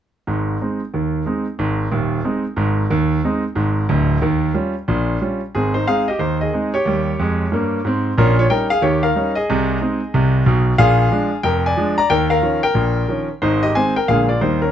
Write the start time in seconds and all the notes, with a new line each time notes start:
0.27 G#1 G#2
0.61 G#3 C4 D#4
0.94 D#2 D#3
1.26 G#3 C4 D#4
1.59 G#1 G#2
1.92 D#1 D#2
2.25 G#3 C4 D#4
2.57 G#1 G#2
2.90 D#2 D#3
3.24 G#3 C4 D#4
3.56 G#1 G#2
3.89 D1 D2
4.22 D#2 D#3
4.54 G3 C#4 F4
4.88 A#1 A#2
5.21 G3 C#4 F4
5.55 G#1 G#2 C4 G#4
5.74 D#4 C5
5.87 G#3 C4 D#4 G#4 F5
6.08 G4 D#5
6.19 D#2 D#3 D#4 C5
6.41 G#4 D#5
6.53 G#3 C4 D#4
6.74 G4 C#5
6.86 D#2 G3
7.19 F2 G#3
7.52 G2 A#3
7.85 G#2 C4
8.18 A#1 A#2 C#4 A#4
8.39 F4 C#5
8.50 G3 C#4 D#4 A#4 G5
8.70 G#4 F5
8.82 D#2 D#3 G4 C#5
9.03 A#4 F5
9.16 G3 C#4 D#4
9.35 G#4 D#5
9.50 C2 C3
9.81 G#3 C4 D#4
10.14 C2 C3
10.46 B1 B2
10.78 A#1 A#2 G#4 F5
11.11 F3 G#3 D4
11.43 F1 F2 A#4 G5
11.66 D5 G#5
11.77 F3 G#3 D4
11.98 D5 A#5
12.10 D#2 D#3 A#4 G5
12.30 A#4 F5
12.42 D#3 F3 C#4
12.63 A#4 G5
12.74 A#1 A#2
13.08 D#3 F3 C#4
13.42 G#1 G#2 D#4 C5
13.63 G4 D#5
13.75 D#3 G#3 C4 C5 G#5
13.96 A#4 G5
14.08 A#1 A#2 D3 G#3 A#3 G#4 F5
14.29 F4 D5
14.41 D#2 D#3 G3 A#3 D#4 C5
14.62 C#4 A#4